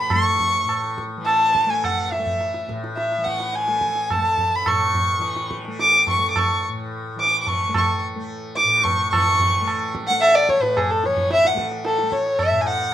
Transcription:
Already playing: tanpura A2 E3 A3, violin B5
0.10 tanpura A3, violin C#6, tabla na, tabla ge
0.40 tabla ge
0.64 tanpura A2
0.69 tabla na
0.98 tabla ke
1.17 tanpura E3
1.25 violin A5, tabla na
1.55 tabla ke
1.66 tanpura A3, tabla te
1.70 violin G#5
1.84 violin F#5, tabla na, tabla ge
2.12 violin E5, tabla te
2.19 tanpura A3
2.26 tabla ge
2.41 tabla te
2.54 tabla te
2.68 tanpura A2, tabla ke
2.84 tabla te
2.97 violin E5, tabla te
3.12 tabla te
3.18 tanpura E3
3.25 violin F#5, tabla ke
3.40 tabla te
3.54 violin G#5, tabla te
3.68 tanpura A3, tabla te
3.81 tabla ke
3.95 tabla te
4.10 violin A5, tabla na, tabla ge
4.17 tanpura A3
4.38 tabla ge
4.55 violin B5
4.66 tanpura A2, violin C#6, tabla na, tabla ge
4.94 tabla ge
5.19 tanpura E3, tabla te
5.36 tabla te
5.51 tabla ke
5.65 tanpura A3, tabla te
5.79 violin D6, tabla te
6.07 violin C#6, tabla tin, tabla ge
6.17 tanpura A3
6.31 violin D6
6.36 violin C#6, tabla na, tabla ge
6.69 tanpura A2
7.16 tanpura E3, tabla te
7.20 violin D6
7.41 violin D6
7.47 violin C#6, tabla tin, tabla ge
7.69 tanpura A3
7.74 violin C#6, tabla na, tabla ge
8.16 tanpura A3
8.56 violin D6, tabla te
8.64 tanpura A2
8.84 violin C#6, tabla tin, tabla ge
9.10 tanpura E3, violin C#6, tabla na, tabla ge
9.40 tabla ge
9.61 tanpura A3
9.68 tabla na
9.95 tabla ke
10.07 tanpura A3, violin F#5
10.18 violin E5 F#5, tabla na
10.35 violin D5
10.49 violin C#5, tabla ke
10.59 tanpura A2, violin B4, tabla te
10.77 violin G#4, tabla na, tabla ge
10.91 violin A4
11.04 tanpura E3, violin C#5, tabla te
11.17 tabla ge
11.30 violin E5, tabla te
11.45 violin F#5, tabla te
11.54 tanpura A3, tabla ke
11.72 tabla te
11.85 violin A4, tabla te
11.98 tanpura A3, tabla te
12.12 violin C#5, tabla ke
12.26 tabla te
12.39 violin E5, tabla na, tabla ge
12.51 tanpura A2
12.61 violin G#5
12.66 violin F#5, tabla te

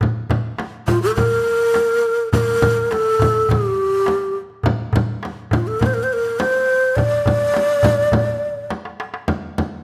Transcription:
0.01 darbuka dum, frame drum
0.30 darbuka dum, frame drum
0.45 darbuka ka
0.58 darbuka tek, frame drum
0.88 ney F4, darbuka dum, frame drum
1.02 ney A4
1.15 ney A#4, darbuka dum, frame drum
1.31 darbuka ka
1.46 darbuka ka
1.60 darbuka ka
1.74 darbuka tek, frame drum
2.05 darbuka ka
2.18 darbuka ka
2.33 ney A#4, darbuka dum, frame drum
2.62 darbuka dum, frame drum
2.77 darbuka ka
2.91 ney A4, darbuka tek, frame drum
3.19 darbuka dum, frame drum
3.49 ney G4, darbuka dum, frame drum
3.64 darbuka ka
3.78 darbuka ka
3.92 darbuka ka
4.06 darbuka tek, frame drum
4.36 darbuka ka
4.50 darbuka ka
4.63 darbuka dum, frame drum
4.93 darbuka dum, frame drum
5.07 darbuka ka
5.23 darbuka tek, frame drum
5.51 ney F4, darbuka dum, frame drum
5.67 ney A4
5.80 ney A#4, darbuka dum, frame drum
5.86 ney C5
5.94 ney A#4
6.03 ney C5
6.11 ney A#4, darbuka ka
6.25 darbuka ka
6.39 ney C5, darbuka tek, frame drum
6.68 darbuka ka
6.83 darbuka ka
6.96 ney D5, darbuka dum, frame drum
7.26 darbuka dum, frame drum
7.40 darbuka ka
7.54 darbuka tek, frame drum
7.83 darbuka dum, frame drum
8.12 darbuka dum, frame drum
8.27 darbuka ka
8.56 darbuka ka
8.70 darbuka tek, frame drum
8.85 darbuka ka
9.00 darbuka tek
9.14 darbuka ka
9.28 frame drum
9.58 frame drum

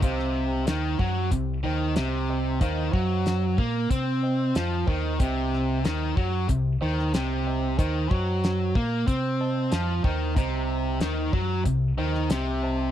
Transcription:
0.02 fingered electric bass C2, distorted electric guitar C3, reed electric piano C5 D#5 F5, kick, closed hi-hat
0.19 snare
0.67 fingered electric bass D#2, distorted electric guitar D#3, snare, closed hi-hat
0.99 fingered electric bass F#2, distorted electric guitar F#3, kick
1.31 fingered electric bass C2, distorted electric guitar C3, kick, closed hi-hat
1.64 fingered electric bass D#2, distorted electric guitar D#3, reed electric piano C5 D#5 G5
1.96 fingered electric bass C2, distorted electric guitar C3, snare, closed hi-hat
2.30 reed electric piano C5 D#5 G5
2.61 fingered electric bass D#2, distorted electric guitar D#3, reed electric piano C5 D#5 F5, kick, closed hi-hat
2.93 fingered electric bass F#2, distorted electric guitar F#3, kick
3.26 snare, closed hi-hat
3.58 fingered electric bass A#2, distorted electric guitar A#3, kick
3.90 fingered electric bass C3, distorted electric guitar C4, kick, closed hi-hat
4.23 reed electric piano C5 D#5 G5
4.55 fingered electric bass F2, distorted electric guitar F3, snare, closed hi-hat
4.87 fingered electric bass D#2, distorted electric guitar D#3, reed electric piano C5 D#5 G5, kick
5.19 fingered electric bass C2, distorted electric guitar C3, reed electric piano C5 D#5 G5, kick, closed hi-hat
5.54 snare
5.85 fingered electric bass D#2, distorted electric guitar D#3, snare, closed hi-hat
6.17 fingered electric bass F#2, distorted electric guitar F#3, kick
6.49 fingered electric bass C2, distorted electric guitar C3, kick, closed hi-hat
6.81 fingered electric bass D#2, distorted electric guitar D#3, reed electric piano C5 D#5 G5
6.99 snare
7.13 fingered electric bass C2, distorted electric guitar C3, snare, closed hi-hat
7.47 reed electric piano C5 D#5 G5
7.79 fingered electric bass D#2, distorted electric guitar D#3, reed electric piano C5 D#5 G5, kick, closed hi-hat
8.11 fingered electric bass F#2, distorted electric guitar F#3, kick
8.44 snare, closed hi-hat
8.75 fingered electric bass A#2, distorted electric guitar A#3, kick
9.08 fingered electric bass C3, distorted electric guitar C4, kick, closed hi-hat
9.40 reed electric piano C5 D#5 A5
9.72 fingered electric bass F2, distorted electric guitar F3, snare, closed hi-hat
10.04 fingered electric bass D#2, distorted electric guitar D#3, reed electric piano C5 D#5 A#5, kick
10.36 fingered electric bass C2, distorted electric guitar C3, reed electric piano C5 D#5 A#5, kick, closed hi-hat
11.01 fingered electric bass D#2, distorted electric guitar D#3, snare, closed hi-hat
11.33 fingered electric bass F#2, distorted electric guitar F#3, kick
11.65 fingered electric bass C2, distorted electric guitar C3, kick, closed hi-hat
11.98 fingered electric bass D#2, distorted electric guitar D#3, reed electric piano C5 D#5 G5
12.15 snare
12.30 fingered electric bass C2, distorted electric guitar C3, snare, closed hi-hat
12.63 reed electric piano C5 D#5 A5

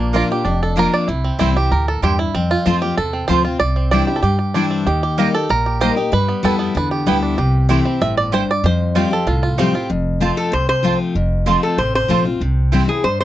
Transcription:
Already playing: upright bass A#1, steel-string acoustic guitar A#2, five-string banjo A#3 D4
0.13 steel-string acoustic guitar F3 A#3 D4 F4, mandolin A#3 F4 D5 A#5, five-string banjo F4
0.30 steel-string acoustic guitar D4 F4, five-string banjo G4
0.45 upright bass F1, steel-string acoustic guitar F2, five-string banjo D4
0.63 five-string banjo A4
0.76 steel-string acoustic guitar F3 A#3 D4 F4, mandolin A#3 F4 D5 A#5, five-string banjo A#4
0.94 five-string banjo D5
1.08 upright bass C2, steel-string acoustic guitar C3, five-string banjo E4
1.24 five-string banjo C4
1.39 upright bass C2, steel-string acoustic guitar E3 G3 C4 E4, mandolin C4 E4 C5 G5, five-string banjo E4
1.55 steel-string acoustic guitar C4 E4, five-string banjo G4
1.71 upright bass D2, steel-string acoustic guitar A2, five-string banjo A#4
1.88 five-string banjo A4
2.02 upright bass E2, steel-string acoustic guitar G2, mandolin C4 E4 C5 G5, five-string banjo G4
2.19 five-string banjo E4
2.34 upright bass F2, steel-string acoustic guitar F2, five-string banjo C4
2.51 five-string banjo F4
2.65 upright bass F2, steel-string acoustic guitar F3 A3 C4 F4, mandolin C4 F4 C5 A5, five-string banjo F4
2.82 steel-string acoustic guitar C4 F4, five-string banjo G4
2.97 upright bass E2, steel-string acoustic guitar C3, five-string banjo A4
3.13 five-string banjo C4
3.28 upright bass D2, steel-string acoustic guitar F3 A3 C4 F4, mandolin C4 F4 C5 A5, five-string banjo C5
3.45 steel-string acoustic guitar C4 F4, five-string banjo F4
3.60 upright bass C2, steel-string acoustic guitar C3, five-string banjo D5
3.76 five-string banjo C4
3.91 steel-string acoustic guitar E3 G3 D4 E4, mandolin C4 E4 D5 G5, five-string banjo D5
4.07 steel-string acoustic guitar D4 E4, five-string banjo G4
4.16 five-string banjo A4
4.23 upright bass G2, steel-string acoustic guitar G2, five-string banjo G4
4.39 five-string banjo G4
4.54 steel-string acoustic guitar E3 G3 D4 E4, mandolin C4 E4 D5 G5, five-string banjo D4
4.71 five-string banjo C4
4.86 upright bass D#2, steel-string acoustic guitar D#3, five-string banjo G4
5.03 five-string banjo G4
5.18 steel-string acoustic guitar G3 A#3 D#4 G4, mandolin A#3 G4 D#5 A#5, five-string banjo G4
5.34 steel-string acoustic guitar D#4 G4, five-string banjo A4
5.49 upright bass A#1, steel-string acoustic guitar A#2, five-string banjo A#4
5.66 five-string banjo G4
5.81 steel-string acoustic guitar G3 A#3 D#4 G4, mandolin A#3 G4 D#5 A#5, five-string banjo C5
5.96 five-string banjo D#4, steel-string acoustic guitar D#4 G4
6.12 upright bass G2, steel-string acoustic guitar G3, five-string banjo B4
6.28 five-string banjo B3
6.43 upright bass F2, steel-string acoustic guitar G3 B3 E4, mandolin B3 E4 B4 G5, five-string banjo A4
6.59 five-string banjo B3
6.75 upright bass E2, steel-string acoustic guitar D3, five-string banjo B4
6.91 five-string banjo G4
7.06 upright bass D2, steel-string acoustic guitar G3 B3 E4, mandolin B3 E4 B4 G5, five-string banjo B3
7.23 five-string banjo D4
7.38 upright bass C2, steel-string acoustic guitar C3, five-string banjo G4
7.69 steel-string acoustic guitar E3 A3 C4 E4, mandolin A3 E4 C5 G5, five-string banjo G4
7.85 five-string banjo C4, steel-string acoustic guitar C4 E4
8.01 upright bass G1, steel-string acoustic guitar A2, five-string banjo E5
8.17 five-string banjo D5
8.32 steel-string acoustic guitar G2, mandolin A3 E4 C5 G5, five-string banjo C5
8.51 five-string banjo D5
8.63 upright bass F2, steel-string acoustic guitar F2, five-string banjo C5
8.95 steel-string acoustic guitar F3 G3 C4 G4, mandolin A3 F4 C5 G5, five-string banjo F4
9.10 steel-string acoustic guitar C4 G4, five-string banjo A4
9.27 upright bass C2, steel-string acoustic guitar A2, five-string banjo F4
9.43 five-string banjo F4
9.58 steel-string acoustic guitar F3 G3 C4 G4, mandolin A3 F4 C5 G5, five-string banjo C4
9.74 steel-string acoustic guitar C4 G4, five-string banjo F4
9.90 upright bass F1, steel-string acoustic guitar F2
10.20 steel-string acoustic guitar F3 A3 C4 F4, mandolin C4 F4 C5 A5
10.37 resonator guitar played with a steel bar A4
10.52 upright bass C2, steel-string acoustic guitar C3, resonator guitar played with a steel bar C5
10.69 resonator guitar played with a steel bar C5
10.83 steel-string acoustic guitar F3 A3 C4 F4, mandolin C4 F4 C5 A5
11.15 upright bass F1, steel-string acoustic guitar F2
11.46 steel-string acoustic guitar F3 A3 C4 F4, mandolin C4 F4 C5 A5
11.63 resonator guitar played with a steel bar A4
11.78 upright bass A1, steel-string acoustic guitar C3, resonator guitar played with a steel bar C5
11.95 resonator guitar played with a steel bar C5
12.08 upright bass A#1, steel-string acoustic guitar F3 A3 C4 F4, mandolin C4 F4 C5 A5
12.25 steel-string acoustic guitar C4 F4
12.41 upright bass C2, steel-string acoustic guitar C3
12.72 steel-string acoustic guitar E3 G3 C4 E4, mandolin C4 E4 C5 G5
12.88 steel-string acoustic guitar C4 E4, resonator guitar played with a steel bar G#4
13.04 upright bass G2, steel-string acoustic guitar G2, resonator guitar played with a steel bar C5
13.20 resonator guitar played with a steel bar C5

